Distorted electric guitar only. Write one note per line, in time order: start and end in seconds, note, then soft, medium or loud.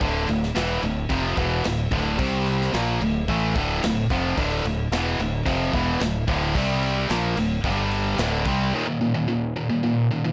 0.00 0.26 D2 medium
0.00 0.27 A2 medium
0.00 0.28 D3 loud
0.27 0.50 D2 medium
0.27 0.51 A2 medium
0.55 0.82 E2 medium
0.55 0.83 B2 medium
0.55 0.83 E3 loud
0.83 1.05 D2 medium
0.83 1.05 A2 medium
1.09 1.36 F2 medium
1.09 1.37 C3 loud
1.09 1.37 F3 loud
1.36 1.64 E2 medium
1.36 1.64 B2 medium
1.36 1.65 E3 medium
1.64 1.87 D2 medium
1.64 1.87 A2 medium
1.91 2.18 D2 loud
1.91 2.18 A2 loud
1.91 2.19 D3 medium
2.18 2.72 C3 medium
2.18 2.73 G3 medium
2.18 2.74 C4 loud
2.73 3.00 A#2 medium
2.73 3.00 F3 medium
2.73 3.01 A#3 loud
3.01 3.23 D2 medium
3.01 3.23 A2 medium
3.28 3.55 A2 medium
3.28 3.55 E3 loud
3.28 3.56 A3 loud
3.55 3.82 D2 medium
3.55 3.83 A2 loud
3.55 3.83 D3 loud
3.83 4.05 D2 medium
3.83 4.06 A2 medium
4.11 4.37 F2 loud
4.11 4.38 C3 loud
4.11 4.38 F3 loud
4.37 4.64 D2 medium
4.37 4.64 A2 loud
4.37 4.65 D3 loud
4.65 4.87 D2 medium
4.65 4.87 A2 medium
4.92 5.19 E2 medium
4.92 5.19 B2 loud
4.92 5.19 E3 loud
5.20 5.42 D2 medium
5.20 5.42 A2 medium
5.45 5.73 F2 medium
5.45 5.73 C3 loud
5.45 5.73 F3 loud
5.73 6.00 E2 medium
5.73 6.01 B2 medium
5.73 6.01 E3 loud
6.01 6.23 D2 medium
6.01 6.23 A2 medium
6.28 6.55 D2 medium
6.28 6.56 A2 loud
6.28 6.56 D3 loud
6.55 7.09 C3 medium
6.55 7.09 G3 loud
6.55 7.10 C4 loud
7.10 7.36 A#2 medium
7.10 7.37 F3 loud
7.10 7.37 A#3 loud
7.37 7.59 D2 medium
7.37 7.59 A2 medium
7.65 8.18 G2 medium
7.65 8.18 D3 loud
7.65 8.19 G3 loud
8.19 8.45 D2 loud
8.19 8.46 A2 loud
8.19 8.46 D3 loud
8.46 8.73 C3 loud
8.46 8.73 G3 loud
8.46 8.74 C4 loud
8.74 8.86 D#2 medium
8.74 8.86 A#2 medium
8.74 8.86 D#3 medium
8.87 9.00 D#2 medium
8.87 9.00 A#2 medium
9.01 9.14 D#2 medium
9.01 9.13 A#2 medium
9.14 9.27 D#2 medium
9.14 9.27 A#2 medium
9.28 9.52 D#2 medium
9.28 9.53 A#2 medium
9.56 9.68 D#2 medium
9.56 9.68 A#2 medium
9.69 9.82 D#2 medium
9.69 9.82 A#2 medium
9.83 10.07 D#2 medium
9.83 10.07 A#2 medium
10.11 10.24 D#2 medium
10.11 10.23 A#2 medium
10.24 10.32 D#2 medium
10.24 10.32 A#2 medium